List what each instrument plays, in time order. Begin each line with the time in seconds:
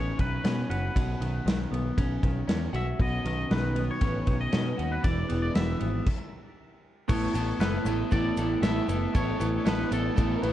Already playing: picked electric bass A1, overdriven electric guitar B2 D#3 B3 C#4, clean electric guitar C#5
0.18 picked electric bass B1, overdriven electric guitar D#3, clean electric guitar B4, kick, ride
0.44 picked electric bass B2, overdriven electric guitar C#4, snare, ride
0.58 snare
0.70 picked electric bass F#1, overdriven electric guitar F#4, clean electric guitar B4, ride
0.95 picked electric bass B1, overdriven electric guitar B2, kick, ride
1.20 picked electric bass B1, overdriven electric guitar D#3, ride
1.46 picked electric bass B1, overdriven electric guitar D#3, snare, ride
1.72 picked electric bass B1, overdriven electric guitar B3, ride
1.97 picked electric bass B1, overdriven electric guitar C#4, kick, ride
2.23 picked electric bass B1, overdriven electric guitar D#3, kick, ride
2.48 picked electric bass E2, overdriven electric guitar C#4, snare, ride
2.73 picked electric bass B1, overdriven electric guitar F#4, clean electric guitar E5, ride
2.98 picked electric bass B1, overdriven electric guitar B2, analog synth pad F#3 B3 C#4 D#4 B4, clean electric guitar D#5, kick, ride
3.25 picked electric bass B1, overdriven electric guitar D#3, clean electric guitar D#5, ride
3.50 picked electric bass B1, overdriven electric guitar D#3, clean electric guitar B4, snare, ride
3.76 overdriven electric guitar B3, ride
3.91 clean electric guitar C#5
4.01 picked electric bass A1, overdriven electric guitar C#4, kick, ride
4.26 picked electric bass B1, overdriven electric guitar D#3, kick, ride
4.41 clean electric guitar D#5
4.52 picked electric bass B2, overdriven electric guitar C#4, snare, ride
4.77 picked electric bass D#2, overdriven electric guitar F#4, ride
4.92 clean electric guitar B4
5.03 picked electric bass E1, overdriven electric guitar E3, analog synth pad G#3 D4 E4, clean electric guitar D5, kick, ride
5.29 picked electric bass E1, overdriven electric guitar B3, ride
5.42 clean electric guitar D5
5.54 picked electric bass E1, overdriven electric guitar E3, clean electric guitar E5, snare, ride
5.80 picked electric bass G#1, overdriven electric guitar B3, ride
6.07 kick, crash
7.08 picked electric bass A1, overdriven electric guitar A3 B3 E4 A4, analog synth pad A3 B3 E4, clean electric guitar C#5, kick, crash, shaker
7.33 picked electric bass A1, overdriven electric guitar A3 B3 E4 A4, ride, shaker
7.48 shaker
7.59 picked electric bass F#1, overdriven electric guitar A3 B3 E4 A4, clean electric guitar B4, snare, ride, shaker
7.85 picked electric bass A1, overdriven electric guitar A3 B3 E4 A4, ride, shaker
8.11 picked electric bass A1, overdriven electric guitar A3 B3 E4 A4, clean electric guitar D5, kick, ride, shaker
8.37 picked electric bass A1, overdriven electric guitar A3 B3 E4 A4, ride, shaker
8.62 picked electric bass A1, overdriven electric guitar A3 B3 E4 A4, clean electric guitar E5, snare, ride, shaker
8.88 picked electric bass F#1, overdriven electric guitar A3 B3 E4 A4, ride, shaker
9.14 picked electric bass A1, overdriven electric guitar A3 B3 E4 A4, analog synth pad D4, clean electric guitar C#5, kick, ride, shaker
9.39 picked electric bass A1, overdriven electric guitar A3 B3 E4 A4, ride, shaker
9.53 shaker
9.64 picked electric bass A1, overdriven electric guitar A3 B3 E4 A4, clean electric guitar B4, snare, ride, shaker
9.91 picked electric bass A1, overdriven electric guitar A3 B3 E4 A4, clean electric guitar A4, ride, shaker
10.16 picked electric bass A1, overdriven electric guitar A3 B3 E4 A4, kick, ride, shaker
10.36 tine electric piano A#4
10.42 picked electric bass A1, overdriven electric guitar A3 B3 E4 A4, tine electric piano B4, ride